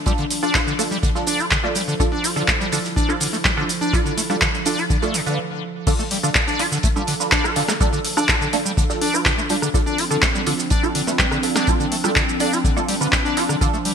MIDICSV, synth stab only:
0, 0, Header, 1, 2, 480
1, 0, Start_track
1, 0, Tempo, 483871
1, 62, Time_signature, 4, 2, 24, 8
1, 13832, End_track
2, 0, Start_track
2, 0, Title_t, "Synth stab"
2, 0, Program_c, 0, 62
2, 62, Note_on_c, 0, 62, 89
2, 62, Note_on_c, 0, 65, 82
2, 62, Note_on_c, 0, 69, 99
2, 251, Note_off_c, 0, 62, 0
2, 251, Note_off_c, 0, 65, 0
2, 251, Note_off_c, 0, 69, 0
2, 424, Note_on_c, 0, 62, 93
2, 424, Note_on_c, 0, 65, 87
2, 424, Note_on_c, 0, 69, 107
2, 611, Note_off_c, 0, 62, 0
2, 611, Note_off_c, 0, 65, 0
2, 611, Note_off_c, 0, 69, 0
2, 782, Note_on_c, 0, 62, 81
2, 782, Note_on_c, 0, 65, 77
2, 782, Note_on_c, 0, 69, 92
2, 901, Note_off_c, 0, 62, 0
2, 901, Note_off_c, 0, 65, 0
2, 901, Note_off_c, 0, 69, 0
2, 1143, Note_on_c, 0, 62, 82
2, 1143, Note_on_c, 0, 65, 75
2, 1143, Note_on_c, 0, 69, 92
2, 1331, Note_off_c, 0, 62, 0
2, 1331, Note_off_c, 0, 65, 0
2, 1331, Note_off_c, 0, 69, 0
2, 1623, Note_on_c, 0, 62, 99
2, 1623, Note_on_c, 0, 65, 89
2, 1623, Note_on_c, 0, 69, 108
2, 1740, Note_off_c, 0, 62, 0
2, 1740, Note_off_c, 0, 65, 0
2, 1740, Note_off_c, 0, 69, 0
2, 1982, Note_on_c, 0, 62, 90
2, 1982, Note_on_c, 0, 65, 82
2, 1982, Note_on_c, 0, 69, 98
2, 2171, Note_off_c, 0, 62, 0
2, 2171, Note_off_c, 0, 65, 0
2, 2171, Note_off_c, 0, 69, 0
2, 2343, Note_on_c, 0, 62, 97
2, 2343, Note_on_c, 0, 65, 87
2, 2343, Note_on_c, 0, 69, 107
2, 2531, Note_off_c, 0, 62, 0
2, 2531, Note_off_c, 0, 65, 0
2, 2531, Note_off_c, 0, 69, 0
2, 2702, Note_on_c, 0, 62, 84
2, 2703, Note_on_c, 0, 65, 78
2, 2703, Note_on_c, 0, 69, 94
2, 2821, Note_off_c, 0, 62, 0
2, 2821, Note_off_c, 0, 65, 0
2, 2821, Note_off_c, 0, 69, 0
2, 3062, Note_on_c, 0, 69, 88
2, 3063, Note_on_c, 0, 62, 82
2, 3063, Note_on_c, 0, 65, 76
2, 3251, Note_off_c, 0, 62, 0
2, 3251, Note_off_c, 0, 65, 0
2, 3251, Note_off_c, 0, 69, 0
2, 3543, Note_on_c, 0, 62, 95
2, 3543, Note_on_c, 0, 65, 88
2, 3543, Note_on_c, 0, 69, 105
2, 3660, Note_off_c, 0, 62, 0
2, 3660, Note_off_c, 0, 65, 0
2, 3660, Note_off_c, 0, 69, 0
2, 3902, Note_on_c, 0, 62, 92
2, 3902, Note_on_c, 0, 65, 82
2, 3902, Note_on_c, 0, 69, 99
2, 4091, Note_off_c, 0, 62, 0
2, 4091, Note_off_c, 0, 65, 0
2, 4091, Note_off_c, 0, 69, 0
2, 4263, Note_on_c, 0, 65, 88
2, 4263, Note_on_c, 0, 69, 109
2, 4264, Note_on_c, 0, 62, 96
2, 4451, Note_off_c, 0, 62, 0
2, 4451, Note_off_c, 0, 65, 0
2, 4451, Note_off_c, 0, 69, 0
2, 4622, Note_on_c, 0, 62, 85
2, 4622, Note_on_c, 0, 65, 76
2, 4622, Note_on_c, 0, 69, 92
2, 4741, Note_off_c, 0, 62, 0
2, 4741, Note_off_c, 0, 65, 0
2, 4741, Note_off_c, 0, 69, 0
2, 4984, Note_on_c, 0, 62, 83
2, 4984, Note_on_c, 0, 65, 74
2, 4984, Note_on_c, 0, 69, 91
2, 5171, Note_off_c, 0, 62, 0
2, 5171, Note_off_c, 0, 69, 0
2, 5172, Note_off_c, 0, 65, 0
2, 5223, Note_on_c, 0, 62, 78
2, 5223, Note_on_c, 0, 65, 69
2, 5223, Note_on_c, 0, 71, 85
2, 5342, Note_off_c, 0, 62, 0
2, 5342, Note_off_c, 0, 65, 0
2, 5342, Note_off_c, 0, 71, 0
2, 5822, Note_on_c, 0, 65, 83
2, 5822, Note_on_c, 0, 69, 102
2, 5823, Note_on_c, 0, 62, 90
2, 6011, Note_off_c, 0, 62, 0
2, 6011, Note_off_c, 0, 65, 0
2, 6011, Note_off_c, 0, 69, 0
2, 6183, Note_on_c, 0, 62, 98
2, 6183, Note_on_c, 0, 65, 88
2, 6183, Note_on_c, 0, 69, 107
2, 6371, Note_off_c, 0, 62, 0
2, 6371, Note_off_c, 0, 65, 0
2, 6371, Note_off_c, 0, 69, 0
2, 6542, Note_on_c, 0, 62, 86
2, 6542, Note_on_c, 0, 65, 80
2, 6542, Note_on_c, 0, 69, 94
2, 6661, Note_off_c, 0, 62, 0
2, 6661, Note_off_c, 0, 65, 0
2, 6661, Note_off_c, 0, 69, 0
2, 6903, Note_on_c, 0, 62, 84
2, 6903, Note_on_c, 0, 65, 75
2, 6903, Note_on_c, 0, 69, 91
2, 7091, Note_off_c, 0, 62, 0
2, 7091, Note_off_c, 0, 65, 0
2, 7091, Note_off_c, 0, 69, 0
2, 7143, Note_on_c, 0, 62, 78
2, 7143, Note_on_c, 0, 65, 71
2, 7143, Note_on_c, 0, 71, 85
2, 7473, Note_off_c, 0, 65, 0
2, 7473, Note_off_c, 0, 71, 0
2, 7474, Note_off_c, 0, 62, 0
2, 7502, Note_on_c, 0, 62, 81
2, 7502, Note_on_c, 0, 69, 88
2, 7503, Note_on_c, 0, 65, 71
2, 7691, Note_off_c, 0, 62, 0
2, 7691, Note_off_c, 0, 65, 0
2, 7691, Note_off_c, 0, 69, 0
2, 7743, Note_on_c, 0, 62, 93
2, 7743, Note_on_c, 0, 65, 84
2, 7743, Note_on_c, 0, 69, 104
2, 7931, Note_off_c, 0, 65, 0
2, 7932, Note_off_c, 0, 62, 0
2, 7932, Note_off_c, 0, 69, 0
2, 8104, Note_on_c, 0, 62, 99
2, 8104, Note_on_c, 0, 65, 89
2, 8104, Note_on_c, 0, 69, 108
2, 8292, Note_off_c, 0, 62, 0
2, 8292, Note_off_c, 0, 65, 0
2, 8292, Note_off_c, 0, 69, 0
2, 8464, Note_on_c, 0, 62, 84
2, 8464, Note_on_c, 0, 65, 78
2, 8464, Note_on_c, 0, 69, 96
2, 8582, Note_off_c, 0, 62, 0
2, 8582, Note_off_c, 0, 65, 0
2, 8582, Note_off_c, 0, 69, 0
2, 8826, Note_on_c, 0, 62, 85
2, 8826, Note_on_c, 0, 65, 78
2, 8826, Note_on_c, 0, 69, 95
2, 9012, Note_off_c, 0, 62, 0
2, 9012, Note_off_c, 0, 65, 0
2, 9012, Note_off_c, 0, 69, 0
2, 9065, Note_on_c, 0, 62, 79
2, 9065, Note_on_c, 0, 65, 71
2, 9065, Note_on_c, 0, 71, 87
2, 9394, Note_off_c, 0, 62, 0
2, 9394, Note_off_c, 0, 65, 0
2, 9394, Note_off_c, 0, 71, 0
2, 9424, Note_on_c, 0, 62, 80
2, 9424, Note_on_c, 0, 65, 74
2, 9424, Note_on_c, 0, 69, 87
2, 9612, Note_off_c, 0, 62, 0
2, 9612, Note_off_c, 0, 65, 0
2, 9612, Note_off_c, 0, 69, 0
2, 9664, Note_on_c, 0, 62, 91
2, 9664, Note_on_c, 0, 65, 84
2, 9664, Note_on_c, 0, 69, 100
2, 9852, Note_off_c, 0, 62, 0
2, 9852, Note_off_c, 0, 65, 0
2, 9852, Note_off_c, 0, 69, 0
2, 10025, Note_on_c, 0, 62, 99
2, 10025, Note_on_c, 0, 65, 87
2, 10025, Note_on_c, 0, 69, 106
2, 10212, Note_off_c, 0, 62, 0
2, 10212, Note_off_c, 0, 65, 0
2, 10212, Note_off_c, 0, 69, 0
2, 10384, Note_on_c, 0, 62, 85
2, 10384, Note_on_c, 0, 65, 78
2, 10384, Note_on_c, 0, 69, 95
2, 10502, Note_off_c, 0, 62, 0
2, 10502, Note_off_c, 0, 65, 0
2, 10502, Note_off_c, 0, 69, 0
2, 10745, Note_on_c, 0, 62, 85
2, 10745, Note_on_c, 0, 65, 76
2, 10745, Note_on_c, 0, 69, 92
2, 10932, Note_off_c, 0, 62, 0
2, 10932, Note_off_c, 0, 65, 0
2, 10932, Note_off_c, 0, 69, 0
2, 10985, Note_on_c, 0, 62, 77
2, 10985, Note_on_c, 0, 65, 73
2, 10985, Note_on_c, 0, 71, 86
2, 11314, Note_off_c, 0, 65, 0
2, 11314, Note_off_c, 0, 71, 0
2, 11315, Note_off_c, 0, 62, 0
2, 11343, Note_on_c, 0, 62, 79
2, 11343, Note_on_c, 0, 65, 73
2, 11343, Note_on_c, 0, 69, 90
2, 11532, Note_off_c, 0, 62, 0
2, 11532, Note_off_c, 0, 65, 0
2, 11532, Note_off_c, 0, 69, 0
2, 11583, Note_on_c, 0, 62, 92
2, 11583, Note_on_c, 0, 65, 83
2, 11583, Note_on_c, 0, 69, 99
2, 11771, Note_off_c, 0, 62, 0
2, 11771, Note_off_c, 0, 69, 0
2, 11772, Note_off_c, 0, 65, 0
2, 11944, Note_on_c, 0, 65, 90
2, 11945, Note_on_c, 0, 62, 98
2, 11945, Note_on_c, 0, 69, 109
2, 12132, Note_off_c, 0, 62, 0
2, 12132, Note_off_c, 0, 65, 0
2, 12132, Note_off_c, 0, 69, 0
2, 12302, Note_on_c, 0, 62, 87
2, 12302, Note_on_c, 0, 65, 77
2, 12302, Note_on_c, 0, 69, 94
2, 12421, Note_off_c, 0, 62, 0
2, 12421, Note_off_c, 0, 65, 0
2, 12421, Note_off_c, 0, 69, 0
2, 12663, Note_on_c, 0, 65, 78
2, 12664, Note_on_c, 0, 62, 82
2, 12664, Note_on_c, 0, 69, 91
2, 12851, Note_off_c, 0, 62, 0
2, 12851, Note_off_c, 0, 65, 0
2, 12851, Note_off_c, 0, 69, 0
2, 12904, Note_on_c, 0, 65, 70
2, 12904, Note_on_c, 0, 71, 86
2, 12905, Note_on_c, 0, 62, 78
2, 13234, Note_off_c, 0, 62, 0
2, 13234, Note_off_c, 0, 65, 0
2, 13234, Note_off_c, 0, 71, 0
2, 13263, Note_on_c, 0, 62, 80
2, 13263, Note_on_c, 0, 65, 75
2, 13263, Note_on_c, 0, 69, 86
2, 13451, Note_off_c, 0, 62, 0
2, 13451, Note_off_c, 0, 65, 0
2, 13451, Note_off_c, 0, 69, 0
2, 13502, Note_on_c, 0, 62, 91
2, 13502, Note_on_c, 0, 65, 83
2, 13502, Note_on_c, 0, 69, 103
2, 13691, Note_off_c, 0, 62, 0
2, 13691, Note_off_c, 0, 65, 0
2, 13691, Note_off_c, 0, 69, 0
2, 13832, End_track
0, 0, End_of_file